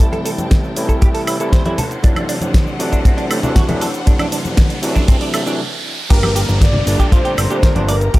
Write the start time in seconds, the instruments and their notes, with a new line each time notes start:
Already playing: string section C4 G5 A5, riser
0.00 analog synth bass A1, tine electric piano C3 E3 G3 A3 E4, kick, closed hi-hat, cabasa, shaker
0.13 clean electric guitar A4, closed hi-hat, high conga, shaker
0.25 clean electric guitar A4, open hi-hat, cabasa
0.38 analog synth bass A1, closed hi-hat, high conga, cabasa, shaker
0.51 kick, snare, closed hi-hat, cabasa, shaker
0.64 shaker
0.76 analog synth bass A1, tine electric piano C3 E3 G3 A3 E4, open hi-hat, cabasa
0.89 clean electric guitar A4, kick, closed hi-hat, cabasa, shaker
1.01 clean electric guitar G4, kick, closed hi-hat, cabasa, shaker
1.14 clean electric guitar A4, open hi-hat, shaker
1.27 analog synth bass A1, clean electric guitar E4, open hi-hat, cabasa, high woodblock
1.40 tine electric piano C3 E3 G3 A3 E4, clean electric guitar A4, closed hi-hat, cabasa, shaker
1.53 clean electric guitar C5, kick, snare, closed hi-hat, cabasa, shaker
1.65 analog synth bass A1, tine electric piano C3 E3 G3 A3 E4, clean electric guitar E4, closed hi-hat, high conga, shaker
1.78 string section D4 C5 F#5, clean electric guitar A4, open hi-hat, low conga, cabasa
1.91 closed hi-hat, cabasa, shaker
2.03 analog synth bass A1, tine electric piano C3 E3 F#3 A3 D4, clean electric guitar D4, kick, closed hi-hat, cabasa, shaker
2.16 clean electric guitar D4, closed hi-hat, high conga, high woodblock, shaker
2.29 clean electric guitar D4, open hi-hat, cabasa
2.41 analog synth bass A1, closed hi-hat, high conga, cabasa, shaker
2.54 kick, snare, closed hi-hat, cabasa, shaker
2.67 shaker
2.79 analog synth bass A1, tine electric piano C3 E3 F#3 A3 D4, open hi-hat, cabasa
2.92 clean electric guitar D4, kick, closed hi-hat, cabasa, shaker
3.05 clean electric guitar C4, kick, closed hi-hat, cabasa, shaker
3.17 clean electric guitar D4, closed hi-hat, shaker
3.30 analog synth bass A1, clean electric guitar A3, open hi-hat, cabasa, high woodblock
3.43 tine electric piano C3 E3 F#3 A3 D4, clean electric guitar D4, closed hi-hat, low conga, cabasa, shaker
3.55 clean electric guitar F#4, kick, snare, closed hi-hat, cabasa, shaker
3.68 analog synth bass A1, tine electric piano C3 E3 F#3 A3 D4, clean electric guitar A3, closed hi-hat, high conga, low conga, shaker
3.81 clean electric guitar A4, open hi-hat, cabasa
3.94 closed hi-hat, cabasa, shaker
4.06 analog synth bass A1, tine electric piano C3 E3 F#3 A3 D4, clean electric guitar D4, kick, closed hi-hat, cabasa, shaker
4.19 clean electric guitar D4, closed hi-hat, high conga, high woodblock, shaker
4.32 clean electric guitar D4, open hi-hat, cabasa
4.45 analog synth bass A1, closed hi-hat, high conga, cabasa, shaker
4.57 kick, snare, closed hi-hat, cabasa, shaker
4.70 closed hi-hat, shaker
4.82 analog synth bass A1, tine electric piano C3 E3 F#3 A3 D4, open hi-hat, cabasa
4.96 clean electric guitar D4, kick, closed hi-hat, high conga, cabasa, shaker
5.08 clean electric guitar C4, kick, closed hi-hat, cabasa, shaker
5.21 clean electric guitar D4, open hi-hat, shaker
5.34 analog synth bass A1, clean electric guitar A3, open hi-hat, cabasa, high woodblock
5.46 tine electric piano C3 E3 F#3 A3 D4, clean electric guitar D4, closed hi-hat, cabasa, shaker
6.09 analog synth bass G1, tine electric piano A#2 D3 G3 A#3 D4, string section G4 A#5, clean electric guitar G4, analog synth lead A#4, kick, closed hi-hat, crash, downlifter, cabasa, shaker
6.23 clean electric guitar G4, closed hi-hat, high conga, high woodblock
6.36 clean electric guitar G4, open hi-hat, cabasa, shaker
6.48 analog synth bass G1, closed hi-hat, high conga, cabasa, shaker
6.61 analog synth lead D5, kick, snare, closed hi-hat, cabasa, shaker
6.73 low conga
6.86 analog synth bass G1, tine electric piano A#2 D3 G3 A3 D4, open hi-hat, cabasa, shaker
6.99 clean electric guitar G4, kick, closed hi-hat, cabasa, shaker
7.12 clean electric guitar F4, analog synth lead C5, kick, closed hi-hat, cabasa, shaker
7.25 clean electric guitar G4, closed hi-hat
7.37 analog synth bass G1, clean electric guitar D4, open hi-hat, cabasa, high woodblock, shaker
7.50 tine electric piano A#2 D3 G3 A3 D4, clean electric guitar G4, closed hi-hat, cabasa, shaker
7.62 clean electric guitar A#4, kick, snare, closed hi-hat, cabasa, shaker
7.75 analog synth bass G1, tine electric piano A#2 D3 G3 A3 D4, clean electric guitar D4, closed hi-hat, high conga
7.88 analog synth lead A#4, clean electric guitar D5, open hi-hat, cabasa, shaker
8.01 closed hi-hat, cabasa, shaker
8.13 analog synth bass G1, tine electric piano A#2 D3 G3 D4, clean electric guitar G4, kick, closed hi-hat, cabasa, shaker